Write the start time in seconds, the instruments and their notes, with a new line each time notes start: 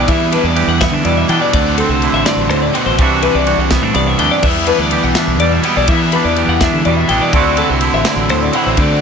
Already playing: clean electric guitar E3 G3 D4, overdriven electric guitar E4
0.07 clean electric guitar E2 E5, overdriven electric guitar E3 G3 B3 E4, fingered electric bass E3, kick, ride
0.32 clean electric guitar D4 B4, ride
0.43 fingered electric bass E2, clean electric guitar D5
0.56 clean electric guitar E3 G4, ride
0.67 fingered electric bass E2, clean electric guitar F#5
0.81 clean electric guitar B3 E5, kick, snare, ride
0.91 fingered electric bass D3, clean electric guitar D4
1.05 fingered electric bass E2, clean electric guitar B2 G3 D5, ride
1.17 clean electric guitar E5
1.28 fingered electric bass E3, overdriven electric guitar E3 G3 B3 E4, clean electric guitar D4 G5, ride
1.41 clean electric guitar D5
1.52 fingered electric bass D2, clean electric guitar D2 D5, overdriven electric guitar D3 A3 C4 F#4, kick, ride
1.78 clean electric guitar C4 A4, ride
1.89 fingered electric bass C2, clean electric guitar C5
2.02 clean electric guitar D3 E4, ride
2.12 fingered electric bass A1, clean electric guitar E5
2.25 clean electric guitar G2 D5, snare, ride
2.36 fingered electric bass A1
2.49 fingered electric bass D2, clean electric guitar A2 C5, ride
2.62 clean electric guitar D5
2.73 clean electric guitar B2 F#5, overdriven electric guitar D3 A3 C4 F#4, ride
2.86 fingered electric bass A1, clean electric guitar C5
2.98 fingered electric bass C2, overdriven electric guitar C3 E3 G3 C4 E4, clean electric guitar C3 E3 D4 E5, kick, ride
3.02 clean electric guitar F#4
3.22 clean electric guitar D4 B4, ride
3.34 fingered electric bass C2, clean electric guitar D5
3.47 clean electric guitar E3 F#4, ride
3.57 fingered electric bass C2, clean electric guitar F#5
3.71 clean electric guitar B3 E5, kick, snare, ride
3.81 fingered electric bass A2, clean electric guitar D4
3.94 fingered electric bass C2, clean electric guitar G2 B3 D5, ride
4.07 clean electric guitar E5
4.18 fingered electric bass D2, overdriven electric guitar C3 E3 G3 C4 E4, clean electric guitar D4 G5, ride
4.31 clean electric guitar D5
4.42 clean electric guitar E2 E5, fingered electric bass E2, overdriven electric guitar E3 G3 B3, kick, crash
4.46 overdriven electric guitar E4
4.67 clean electric guitar D4 B4, ride
4.78 fingered electric bass D2, clean electric guitar D5
4.91 clean electric guitar E3 G4, ride
5.03 fingered electric bass B1, clean electric guitar F#5
5.15 clean electric guitar D4 E5, snare, ride
5.27 fingered electric bass B1
5.39 fingered electric bass E2, clean electric guitar B2 G3 D5, ride
5.52 clean electric guitar E5
5.63 overdriven electric guitar E3 G3 B3 E4, clean electric guitar B3 G5, ride
5.76 fingered electric bass B1, clean electric guitar D4 D5
5.88 clean electric guitar E2 E5, fingered electric bass E3, overdriven electric guitar E3 G3 B3 E4, kick, ride
6.12 clean electric guitar D4 B4, ride
6.24 fingered electric bass E2, clean electric guitar D5
6.36 clean electric guitar E3 G4, ride
6.47 fingered electric bass E2, clean electric guitar F#5
6.61 clean electric guitar D4 E5, kick, snare, ride
6.73 fingered electric bass D3
6.85 fingered electric bass E2, clean electric guitar B2 G3 D5, ride
6.97 clean electric guitar E5
7.08 fingered electric bass A1, overdriven electric guitar E3 G3 B3 E4, clean electric guitar D4 G5, ride
7.22 clean electric guitar D5
7.32 fingered electric bass D2, clean electric guitar D2 D3 C4 E4 F#4 D5, overdriven electric guitar D3 A3 C4 F#4, kick, ride
7.57 clean electric guitar E4 A4, ride
7.69 fingered electric bass C2, clean electric guitar C5
7.81 clean electric guitar D3 E4, ride
7.92 fingered electric bass A1, clean electric guitar E5
8.05 clean electric guitar E4 D5, snare, ride
8.16 fingered electric bass A1
8.29 fingered electric bass D2, clean electric guitar A2 C4 C5, ride
8.42 clean electric guitar D5
8.53 overdriven electric guitar D3 A3 C4 F#4, clean electric guitar E4 F#5, ride
8.66 fingered electric bass A1, clean electric guitar C5
8.77 clean electric guitar D2 D5, overdriven electric guitar D3 A3 C4 F#4, fingered electric bass D3, kick, ride